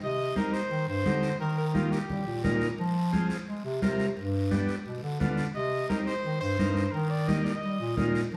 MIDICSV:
0, 0, Header, 1, 5, 480
1, 0, Start_track
1, 0, Key_signature, -3, "minor"
1, 0, Tempo, 346021
1, 22, Time_signature, 4, 2, 24, 8
1, 11609, End_track
2, 0, Start_track
2, 0, Title_t, "Trumpet"
2, 0, Program_c, 0, 56
2, 45, Note_on_c, 0, 75, 108
2, 481, Note_off_c, 0, 75, 0
2, 509, Note_on_c, 0, 70, 99
2, 739, Note_on_c, 0, 72, 104
2, 760, Note_off_c, 0, 70, 0
2, 1221, Note_off_c, 0, 72, 0
2, 1228, Note_on_c, 0, 72, 106
2, 1896, Note_off_c, 0, 72, 0
2, 1949, Note_on_c, 0, 70, 89
2, 2169, Note_off_c, 0, 70, 0
2, 2189, Note_on_c, 0, 70, 85
2, 2296, Note_off_c, 0, 70, 0
2, 2419, Note_on_c, 0, 65, 85
2, 2664, Note_on_c, 0, 67, 83
2, 2685, Note_off_c, 0, 65, 0
2, 3624, Note_off_c, 0, 67, 0
2, 7704, Note_on_c, 0, 75, 103
2, 8150, Note_off_c, 0, 75, 0
2, 8173, Note_on_c, 0, 70, 88
2, 8283, Note_off_c, 0, 70, 0
2, 8416, Note_on_c, 0, 72, 99
2, 8866, Note_off_c, 0, 72, 0
2, 8887, Note_on_c, 0, 72, 109
2, 9594, Note_on_c, 0, 70, 91
2, 9615, Note_off_c, 0, 72, 0
2, 9842, Note_on_c, 0, 74, 93
2, 9863, Note_off_c, 0, 70, 0
2, 10092, Note_on_c, 0, 75, 100
2, 10113, Note_off_c, 0, 74, 0
2, 10311, Note_off_c, 0, 75, 0
2, 10320, Note_on_c, 0, 75, 102
2, 11235, Note_off_c, 0, 75, 0
2, 11609, End_track
3, 0, Start_track
3, 0, Title_t, "Transistor combo organ"
3, 0, Program_c, 1, 18
3, 496, Note_on_c, 1, 60, 70
3, 505, Note_on_c, 1, 63, 68
3, 506, Note_on_c, 1, 67, 79
3, 835, Note_off_c, 1, 60, 0
3, 840, Note_off_c, 1, 63, 0
3, 841, Note_off_c, 1, 67, 0
3, 1456, Note_on_c, 1, 60, 72
3, 1464, Note_on_c, 1, 63, 63
3, 1469, Note_on_c, 1, 67, 78
3, 1795, Note_off_c, 1, 60, 0
3, 1799, Note_off_c, 1, 63, 0
3, 1802, Note_off_c, 1, 67, 0
3, 2415, Note_on_c, 1, 58, 70
3, 2417, Note_on_c, 1, 63, 66
3, 2424, Note_on_c, 1, 67, 78
3, 2755, Note_off_c, 1, 58, 0
3, 2756, Note_off_c, 1, 63, 0
3, 2760, Note_off_c, 1, 67, 0
3, 3381, Note_on_c, 1, 58, 84
3, 3389, Note_on_c, 1, 63, 77
3, 3393, Note_on_c, 1, 70, 92
3, 3718, Note_off_c, 1, 58, 0
3, 3722, Note_off_c, 1, 63, 0
3, 3724, Note_off_c, 1, 70, 0
3, 4336, Note_on_c, 1, 60, 80
3, 4339, Note_on_c, 1, 65, 82
3, 4347, Note_on_c, 1, 68, 94
3, 4676, Note_off_c, 1, 60, 0
3, 4677, Note_off_c, 1, 65, 0
3, 4681, Note_off_c, 1, 68, 0
3, 5299, Note_on_c, 1, 60, 84
3, 5304, Note_on_c, 1, 65, 75
3, 5310, Note_on_c, 1, 70, 99
3, 5637, Note_off_c, 1, 60, 0
3, 5640, Note_off_c, 1, 65, 0
3, 5643, Note_off_c, 1, 70, 0
3, 6252, Note_on_c, 1, 59, 88
3, 6260, Note_on_c, 1, 62, 77
3, 6266, Note_on_c, 1, 67, 94
3, 6594, Note_off_c, 1, 59, 0
3, 6598, Note_off_c, 1, 62, 0
3, 6601, Note_off_c, 1, 67, 0
3, 7211, Note_on_c, 1, 59, 87
3, 7220, Note_on_c, 1, 62, 75
3, 7223, Note_on_c, 1, 65, 91
3, 7553, Note_off_c, 1, 59, 0
3, 7558, Note_off_c, 1, 62, 0
3, 7559, Note_off_c, 1, 65, 0
3, 8181, Note_on_c, 1, 60, 73
3, 8189, Note_on_c, 1, 63, 65
3, 8193, Note_on_c, 1, 67, 76
3, 8518, Note_off_c, 1, 60, 0
3, 8522, Note_off_c, 1, 63, 0
3, 8524, Note_off_c, 1, 67, 0
3, 9134, Note_on_c, 1, 60, 68
3, 9141, Note_on_c, 1, 63, 63
3, 9147, Note_on_c, 1, 70, 80
3, 9474, Note_off_c, 1, 60, 0
3, 9478, Note_off_c, 1, 63, 0
3, 9481, Note_off_c, 1, 70, 0
3, 10094, Note_on_c, 1, 58, 70
3, 10102, Note_on_c, 1, 63, 65
3, 10107, Note_on_c, 1, 67, 84
3, 10434, Note_off_c, 1, 58, 0
3, 10438, Note_off_c, 1, 63, 0
3, 10441, Note_off_c, 1, 67, 0
3, 11054, Note_on_c, 1, 58, 91
3, 11058, Note_on_c, 1, 63, 81
3, 11064, Note_on_c, 1, 65, 92
3, 11394, Note_off_c, 1, 58, 0
3, 11396, Note_off_c, 1, 63, 0
3, 11399, Note_off_c, 1, 65, 0
3, 11609, End_track
4, 0, Start_track
4, 0, Title_t, "Bass clarinet"
4, 0, Program_c, 2, 71
4, 22, Note_on_c, 2, 48, 103
4, 491, Note_off_c, 2, 48, 0
4, 985, Note_on_c, 2, 51, 93
4, 1176, Note_off_c, 2, 51, 0
4, 1224, Note_on_c, 2, 43, 97
4, 1416, Note_off_c, 2, 43, 0
4, 1465, Note_on_c, 2, 50, 99
4, 1848, Note_off_c, 2, 50, 0
4, 1952, Note_on_c, 2, 51, 107
4, 2716, Note_off_c, 2, 51, 0
4, 2907, Note_on_c, 2, 55, 91
4, 3097, Note_off_c, 2, 55, 0
4, 3140, Note_on_c, 2, 46, 87
4, 3334, Note_off_c, 2, 46, 0
4, 3381, Note_on_c, 2, 46, 102
4, 3766, Note_off_c, 2, 46, 0
4, 3863, Note_on_c, 2, 53, 111
4, 4632, Note_off_c, 2, 53, 0
4, 4825, Note_on_c, 2, 56, 89
4, 5017, Note_off_c, 2, 56, 0
4, 5065, Note_on_c, 2, 48, 101
4, 5256, Note_off_c, 2, 48, 0
4, 5306, Note_on_c, 2, 48, 101
4, 5689, Note_off_c, 2, 48, 0
4, 5783, Note_on_c, 2, 43, 102
4, 6551, Note_off_c, 2, 43, 0
4, 6747, Note_on_c, 2, 47, 90
4, 6938, Note_off_c, 2, 47, 0
4, 6982, Note_on_c, 2, 50, 96
4, 7175, Note_off_c, 2, 50, 0
4, 7218, Note_on_c, 2, 50, 99
4, 7604, Note_off_c, 2, 50, 0
4, 7701, Note_on_c, 2, 48, 102
4, 8171, Note_off_c, 2, 48, 0
4, 8662, Note_on_c, 2, 51, 91
4, 8854, Note_off_c, 2, 51, 0
4, 8901, Note_on_c, 2, 43, 98
4, 9094, Note_off_c, 2, 43, 0
4, 9139, Note_on_c, 2, 43, 98
4, 9525, Note_off_c, 2, 43, 0
4, 9626, Note_on_c, 2, 51, 107
4, 10393, Note_off_c, 2, 51, 0
4, 10583, Note_on_c, 2, 55, 92
4, 10775, Note_off_c, 2, 55, 0
4, 10828, Note_on_c, 2, 46, 100
4, 11018, Note_off_c, 2, 46, 0
4, 11063, Note_on_c, 2, 46, 101
4, 11447, Note_off_c, 2, 46, 0
4, 11539, Note_on_c, 2, 53, 102
4, 11609, Note_off_c, 2, 53, 0
4, 11609, End_track
5, 0, Start_track
5, 0, Title_t, "Drums"
5, 20, Note_on_c, 9, 74, 74
5, 22, Note_on_c, 9, 63, 35
5, 159, Note_off_c, 9, 74, 0
5, 161, Note_off_c, 9, 63, 0
5, 503, Note_on_c, 9, 73, 65
5, 504, Note_on_c, 9, 63, 77
5, 641, Note_off_c, 9, 73, 0
5, 642, Note_off_c, 9, 63, 0
5, 745, Note_on_c, 9, 73, 68
5, 884, Note_off_c, 9, 73, 0
5, 982, Note_on_c, 9, 63, 34
5, 987, Note_on_c, 9, 74, 67
5, 1120, Note_off_c, 9, 63, 0
5, 1126, Note_off_c, 9, 74, 0
5, 1465, Note_on_c, 9, 73, 72
5, 1470, Note_on_c, 9, 63, 85
5, 1604, Note_off_c, 9, 73, 0
5, 1608, Note_off_c, 9, 63, 0
5, 1704, Note_on_c, 9, 73, 66
5, 1842, Note_off_c, 9, 73, 0
5, 1948, Note_on_c, 9, 74, 71
5, 1956, Note_on_c, 9, 63, 34
5, 2086, Note_off_c, 9, 74, 0
5, 2095, Note_off_c, 9, 63, 0
5, 2429, Note_on_c, 9, 63, 80
5, 2429, Note_on_c, 9, 73, 67
5, 2568, Note_off_c, 9, 63, 0
5, 2568, Note_off_c, 9, 73, 0
5, 2669, Note_on_c, 9, 73, 71
5, 2808, Note_off_c, 9, 73, 0
5, 2907, Note_on_c, 9, 74, 69
5, 2914, Note_on_c, 9, 63, 36
5, 2914, Note_on_c, 9, 64, 72
5, 3046, Note_off_c, 9, 74, 0
5, 3053, Note_off_c, 9, 63, 0
5, 3053, Note_off_c, 9, 64, 0
5, 3384, Note_on_c, 9, 73, 70
5, 3392, Note_on_c, 9, 63, 83
5, 3392, Note_on_c, 9, 64, 80
5, 3523, Note_off_c, 9, 73, 0
5, 3531, Note_off_c, 9, 63, 0
5, 3531, Note_off_c, 9, 64, 0
5, 3624, Note_on_c, 9, 73, 72
5, 3762, Note_off_c, 9, 73, 0
5, 3861, Note_on_c, 9, 74, 74
5, 3876, Note_on_c, 9, 63, 33
5, 3999, Note_off_c, 9, 74, 0
5, 4014, Note_off_c, 9, 63, 0
5, 4338, Note_on_c, 9, 73, 71
5, 4352, Note_on_c, 9, 63, 82
5, 4476, Note_off_c, 9, 73, 0
5, 4490, Note_off_c, 9, 63, 0
5, 4578, Note_on_c, 9, 73, 77
5, 4716, Note_off_c, 9, 73, 0
5, 4823, Note_on_c, 9, 74, 65
5, 4830, Note_on_c, 9, 63, 36
5, 4962, Note_off_c, 9, 74, 0
5, 4968, Note_off_c, 9, 63, 0
5, 5302, Note_on_c, 9, 73, 73
5, 5305, Note_on_c, 9, 63, 86
5, 5441, Note_off_c, 9, 73, 0
5, 5444, Note_off_c, 9, 63, 0
5, 5542, Note_on_c, 9, 73, 68
5, 5680, Note_off_c, 9, 73, 0
5, 5782, Note_on_c, 9, 74, 73
5, 5790, Note_on_c, 9, 63, 34
5, 5920, Note_off_c, 9, 74, 0
5, 5929, Note_off_c, 9, 63, 0
5, 6260, Note_on_c, 9, 73, 67
5, 6263, Note_on_c, 9, 63, 87
5, 6399, Note_off_c, 9, 73, 0
5, 6402, Note_off_c, 9, 63, 0
5, 6500, Note_on_c, 9, 73, 68
5, 6639, Note_off_c, 9, 73, 0
5, 6738, Note_on_c, 9, 74, 69
5, 6747, Note_on_c, 9, 63, 34
5, 6877, Note_off_c, 9, 74, 0
5, 6886, Note_off_c, 9, 63, 0
5, 7218, Note_on_c, 9, 73, 69
5, 7229, Note_on_c, 9, 63, 83
5, 7229, Note_on_c, 9, 64, 86
5, 7356, Note_off_c, 9, 73, 0
5, 7368, Note_off_c, 9, 63, 0
5, 7368, Note_off_c, 9, 64, 0
5, 7456, Note_on_c, 9, 73, 68
5, 7595, Note_off_c, 9, 73, 0
5, 7700, Note_on_c, 9, 74, 70
5, 7709, Note_on_c, 9, 63, 34
5, 7839, Note_off_c, 9, 74, 0
5, 7848, Note_off_c, 9, 63, 0
5, 8184, Note_on_c, 9, 63, 79
5, 8187, Note_on_c, 9, 73, 72
5, 8323, Note_off_c, 9, 63, 0
5, 8326, Note_off_c, 9, 73, 0
5, 8427, Note_on_c, 9, 73, 68
5, 8565, Note_off_c, 9, 73, 0
5, 8669, Note_on_c, 9, 74, 63
5, 8672, Note_on_c, 9, 63, 33
5, 8808, Note_off_c, 9, 74, 0
5, 8810, Note_off_c, 9, 63, 0
5, 9147, Note_on_c, 9, 63, 81
5, 9148, Note_on_c, 9, 73, 69
5, 9285, Note_off_c, 9, 63, 0
5, 9287, Note_off_c, 9, 73, 0
5, 9388, Note_on_c, 9, 73, 71
5, 9527, Note_off_c, 9, 73, 0
5, 9628, Note_on_c, 9, 63, 34
5, 9629, Note_on_c, 9, 74, 71
5, 9766, Note_off_c, 9, 63, 0
5, 9768, Note_off_c, 9, 74, 0
5, 10105, Note_on_c, 9, 73, 72
5, 10107, Note_on_c, 9, 63, 82
5, 10244, Note_off_c, 9, 73, 0
5, 10246, Note_off_c, 9, 63, 0
5, 10350, Note_on_c, 9, 73, 74
5, 10489, Note_off_c, 9, 73, 0
5, 10587, Note_on_c, 9, 63, 35
5, 10589, Note_on_c, 9, 74, 66
5, 10726, Note_off_c, 9, 63, 0
5, 10728, Note_off_c, 9, 74, 0
5, 11062, Note_on_c, 9, 63, 85
5, 11062, Note_on_c, 9, 64, 87
5, 11067, Note_on_c, 9, 73, 70
5, 11201, Note_off_c, 9, 63, 0
5, 11201, Note_off_c, 9, 64, 0
5, 11206, Note_off_c, 9, 73, 0
5, 11308, Note_on_c, 9, 73, 70
5, 11447, Note_off_c, 9, 73, 0
5, 11546, Note_on_c, 9, 63, 34
5, 11546, Note_on_c, 9, 74, 72
5, 11609, Note_off_c, 9, 63, 0
5, 11609, Note_off_c, 9, 74, 0
5, 11609, End_track
0, 0, End_of_file